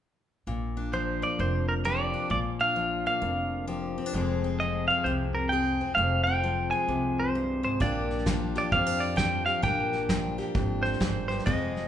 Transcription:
0.47 1.22 A#1 medium
0.47 1.39 A#2 medium
0.77 2.12 D4 medium
0.93 1.84 F3 medium
0.93 1.23 C5 medium
1.22 2.28 A#3 soft
1.22 1.40 D5 medium
1.39 2.14 F1 medium
1.39 2.31 F2 medium
1.39 1.68 C5 medium
1.69 1.74 A#4 medium
1.85 2.76 F3 medium
1.85 2.29 G4 medium
1.85 2.30 D5 medium
2.14 2.28 D4 soft
2.30 3.05 A#1 medium
2.30 3.22 A#2 medium
2.30 2.39 D5 medium
2.60 3.97 D4 medium
2.60 3.06 F5 medium
2.76 3.67 F3 medium
3.07 4.12 A#3 medium
3.07 3.65 F5 medium
3.22 3.97 F1 medium
3.22 4.13 F2 medium
3.67 4.14 F3 medium
3.67 4.12 G4 medium
3.98 4.06 C4 medium
4.06 4.14 D4 soft
4.13 4.88 F1 medium
4.13 5.97 F2 medium
4.13 4.60 F3 medium
4.13 4.90 G#3 medium
4.13 4.44 C4 soft
4.13 5.52 G#4 medium
4.44 5.80 C4 medium
4.60 5.51 F3 medium
4.60 4.87 D#5 medium
4.88 6.71 G#3 medium
4.88 5.05 F5 medium
5.04 5.80 C2 medium
5.04 5.52 C3 medium
5.04 5.12 C5 medium
5.35 5.52 A#4 medium
5.49 6.43 F3 medium
5.49 5.96 G#4 medium
5.49 5.94 G5 medium
5.81 6.26 C4 soft
5.95 6.72 F1 medium
5.95 7.35 F2 medium
5.95 6.23 F5 medium
6.24 7.81 C4 medium
6.24 6.70 G5 medium
6.44 7.79 F3 medium
6.71 7.80 G#3 medium
6.71 7.30 G#5 medium
6.88 7.63 C2 medium
6.88 7.78 C3 medium
7.20 7.63 C5 medium
7.35 7.63 G2 medium
7.63 7.80 G#2 medium
7.63 7.81 C5 medium
7.80 8.55 A#1 medium
7.80 8.72 A#2 medium
7.80 9.62 A#3 soft
7.80 8.27 D4 medium
7.80 8.55 G4 medium
7.80 8.24 D5 medium
7.80 kick medium
7.80 snare soft
8.10 snare soft
8.19 snare soft
8.26 9.16 F3 medium
8.26 8.73 D4 medium
8.26 kick medium
8.26 snare loud
8.26 hi-hat pedal medium
8.55 9.45 G4 medium
8.55 8.74 D5 medium
8.55 snare soft
8.72 9.64 F2 medium
8.72 9.47 F2 medium
8.72 8.86 C4 medium
8.72 9.02 F5 medium
8.72 kick medium
8.72 snare soft
8.86 9.63 D4 medium
9.00 9.18 D5 medium
9.00 snare soft
9.16 9.67 F3 medium
9.16 9.45 G5 loud
9.16 kick medium
9.16 snare loud
9.16 hi-hat pedal medium
9.46 9.61 G4 medium
9.46 9.63 F5 medium
9.46 snare soft
9.62 10.38 A#1 medium
9.62 10.54 A#2 medium
9.62 11.44 A#3 medium
9.62 10.09 D4 medium
9.62 10.37 G4 medium
9.62 10.88 G5 loud
9.62 kick loud
9.62 snare soft
9.93 snare soft
10.09 11.88 F3 medium
10.09 10.54 D4 medium
10.09 kick medium
10.09 snare loud
10.09 hi-hat pedal medium
10.38 11.44 G4 medium
10.38 snare soft
10.55 10.94 G#1 medium
10.55 11.00 F2 medium
10.55 11.45 D4 soft
10.55 kick loud
10.55 snare soft
10.83 11.26 C5 medium
10.83 snare soft
10.93 snare soft
11.00 11.40 G1 medium
11.00 11.29 G#2 medium
11.00 kick medium
11.00 snare loud
11.00 hi-hat pedal medium
11.28 11.45 G2 medium
11.28 11.46 C5 medium
11.28 snare soft
11.39 snare soft
11.46 11.88 F1 medium
11.46 11.88 F2 medium
11.46 11.88 G#3 medium
11.46 11.88 C4 medium
11.46 11.88 G#4 medium
11.46 11.88 D#5 medium
11.46 kick loud
11.46 snare soft
11.76 snare soft

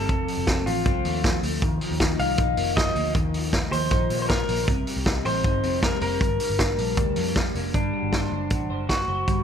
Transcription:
0.00 0.13 G3 medium
0.00 0.13 C4 medium
0.00 0.13 D#4 medium
0.00 0.69 A4 loud
0.09 0.25 F1 loud
0.09 1.62 F2 medium
0.09 kick loud
0.09 closed hi-hat medium
0.28 0.67 F3 medium
0.28 open hi-hat medium
0.37 0.62 F1 medium
0.47 0.85 C4 medium
0.47 kick loud
0.47 snare loud
0.47 closed hi-hat medium
0.66 0.83 A1 loud
0.66 1.25 F3 medium
0.66 1.39 F4 medium
0.66 open hi-hat medium
0.86 1.02 C2 loud
0.86 1.67 C4 medium
0.86 kick loud
0.86 closed hi-hat medium
1.05 1.37 D#2 medium
1.05 1.42 A3 medium
1.05 open hi-hat medium
1.24 1.81 F3 medium
1.24 kick loud
1.24 snare loud
1.24 closed hi-hat medium
1.43 1.59 D2 medium
1.43 1.66 A3 medium
1.43 open hi-hat medium
1.62 1.79 D#2 loud
1.62 3.15 D#3 medium
1.62 kick loud
1.62 closed hi-hat medium
1.81 2.18 F3 medium
1.81 open hi-hat medium
1.91 2.15 D#2 medium
2.00 2.38 D#4 medium
2.00 kick medium
2.00 snare loud
2.00 closed hi-hat medium
2.19 2.36 C2 medium
2.19 2.75 F3 medium
2.19 2.76 F5 loud
2.19 open hi-hat medium
2.38 2.55 A#1 loud
2.38 3.53 D#4 medium
2.38 kick loud
2.38 closed hi-hat medium
2.57 2.90 F1 loud
2.57 2.95 A#3 medium
2.57 open hi-hat medium
2.76 3.33 F3 medium
2.76 3.12 D#5 medium
2.76 kick loud
2.76 snare loud
2.76 closed hi-hat medium
2.96 3.12 D2 medium
2.96 4.10 A#3 medium
2.96 open hi-hat medium
3.15 3.70 D#2 loud
3.15 4.68 D#3 medium
3.15 kick loud
3.15 closed hi-hat medium
3.34 3.72 F3 medium
3.34 open hi-hat medium
3.53 3.91 D#4 medium
3.53 kick medium
3.53 snare loud
3.53 closed hi-hat medium
3.72 3.89 D#2 loud
3.72 4.29 F3 medium
3.72 4.21 C5 loud
3.72 open hi-hat medium
3.91 4.08 A#1 loud
3.91 4.72 D#4 medium
3.91 kick loud
3.91 closed hi-hat medium
4.10 4.43 A#1 medium
4.10 4.48 A#3 medium
4.10 open hi-hat medium
4.22 4.28 C5 medium
4.29 4.72 F3 medium
4.29 4.65 A#4 medium
4.29 kick loud
4.29 snare loud
4.29 closed hi-hat medium
4.49 4.65 A#1 medium
4.49 4.72 A#3 medium
4.49 open hi-hat medium
4.68 4.84 C2 loud
4.68 6.21 C3 medium
4.68 kick loud
4.68 closed hi-hat medium
4.87 5.25 G3 medium
4.87 open hi-hat medium
4.97 5.21 C2 loud
5.06 5.43 D#4 medium
5.06 kick loud
5.06 snare loud
5.06 closed hi-hat medium
5.25 5.42 A1 loud
5.25 5.81 G3 medium
5.25 5.83 C5 loud
5.25 open hi-hat medium
5.44 5.61 G1 medium
5.44 6.25 D#4 medium
5.44 kick loud
5.44 closed hi-hat medium
5.63 5.96 F1 medium
5.63 6.00 C4 medium
5.63 open hi-hat medium
5.82 6.25 G3 medium
5.82 6.01 A#4 medium
5.82 kick loud
5.82 snare loud
5.82 closed hi-hat medium
6.01 6.18 F1 medium
6.01 6.25 C4 medium
6.01 7.32 A#4 medium
6.01 open hi-hat medium
6.20 6.37 G1 medium
6.20 7.74 G2 medium
6.20 kick loud
6.20 closed hi-hat medium
6.40 6.78 G3 medium
6.40 open hi-hat medium
6.50 6.74 G1 medium
6.59 6.97 D4 medium
6.59 kick medium
6.59 snare loud
6.59 closed hi-hat medium
6.78 6.95 A#1 medium
6.78 7.35 G3 medium
6.78 open hi-hat medium
6.97 7.14 D2 medium
6.97 7.93 D4 medium
6.97 kick loud
6.97 closed hi-hat medium
7.16 7.49 F2 medium
7.16 7.54 A#3 medium
7.16 open hi-hat medium
7.36 7.73 G3 medium
7.36 kick loud
7.36 snare loud
7.36 closed hi-hat medium
7.55 7.71 F1 medium
7.55 7.78 A#3 medium
7.55 open hi-hat medium
7.74 7.91 G1 medium
7.74 9.27 G3 medium
7.74 8.85 D4 medium
7.74 kick loud
7.74 closed hi-hat medium
7.93 8.50 F#4 soft
8.03 8.27 G1 medium
8.12 8.69 C5 medium
8.12 kick medium
8.12 snare medium
8.12 closed hi-hat medium
8.32 8.48 F#1 medium
8.32 9.43 D4 medium
8.50 8.67 A1 medium
8.50 8.88 F#4 medium
8.50 kick loud
8.50 closed hi-hat medium
8.70 9.02 F#1 medium
8.70 9.07 C5 medium
8.89 9.43 F#4 medium
8.89 kick medium
8.89 snare medium
8.89 closed hi-hat medium
9.08 9.25 F#1 medium
9.08 9.43 C5 medium
9.28 9.43 G1 medium
9.28 9.43 G3 medium
9.28 kick loud
9.28 closed hi-hat medium

